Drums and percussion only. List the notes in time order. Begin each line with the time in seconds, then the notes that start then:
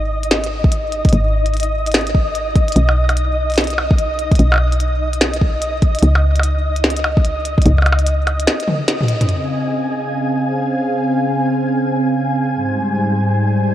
0.23 closed hi-hat
0.31 snare, closed hi-hat
0.44 closed hi-hat
0.64 kick
0.72 closed hi-hat
0.92 closed hi-hat
1.05 kick, closed hi-hat
1.09 closed hi-hat
1.13 closed hi-hat
1.46 closed hi-hat
1.54 closed hi-hat
1.57 closed hi-hat
1.60 closed hi-hat
1.63 closed hi-hat
1.86 closed hi-hat
1.92 snare, closed hi-hat
1.94 closed hi-hat
1.99 closed hi-hat
2.01 closed hi-hat
2.07 closed hi-hat
2.15 kick
2.35 closed hi-hat
2.56 kick, closed hi-hat
2.68 closed hi-hat
2.72 closed hi-hat
2.76 closed hi-hat
2.89 percussion blips
3.09 closed hi-hat, percussion blips
3.17 closed hi-hat
3.50 closed hi-hat
3.52 closed hi-hat
3.54 closed hi-hat
3.56 snare, closed hi-hat
3.58 closed hi-hat
3.61 closed hi-hat
3.64 closed hi-hat
3.67 closed hi-hat
3.70 closed hi-hat
3.78 percussion blips
3.91 kick
3.98 closed hi-hat
4.19 closed hi-hat
4.31 kick, closed hi-hat
4.35 closed hi-hat
4.39 closed hi-hat
4.52 percussion blips
4.54 percussion blips
4.56 percussion blips
4.58 percussion blips
4.72 closed hi-hat
4.80 closed hi-hat
5.13 closed hi-hat
5.21 snare, closed hi-hat
5.33 closed hi-hat
5.41 kick
5.62 closed hi-hat
5.82 kick, closed hi-hat
5.95 closed hi-hat
5.99 closed hi-hat
6.02 closed hi-hat
6.15 percussion blips
6.36 closed hi-hat, percussion blips
6.43 closed hi-hat
6.76 closed hi-hat
6.84 snare
6.90 closed hi-hat
6.97 closed hi-hat
7.04 percussion blips
7.17 kick
7.25 closed hi-hat
7.45 closed hi-hat
7.58 kick, closed hi-hat
7.66 closed hi-hat, mid tom
7.78 percussion blips
7.82 closed hi-hat, percussion blips
7.86 percussion blips
7.93 percussion blips
7.99 closed hi-hat
8.07 closed hi-hat
8.27 closed hi-hat, percussion blips
8.40 closed hi-hat
8.47 snare, closed hi-hat
8.60 closed hi-hat
8.68 high tom
8.88 snare, closed hi-hat
9.01 mid tom
9.09 closed hi-hat
9.21 closed hi-hat, mid tom
9.29 closed hi-hat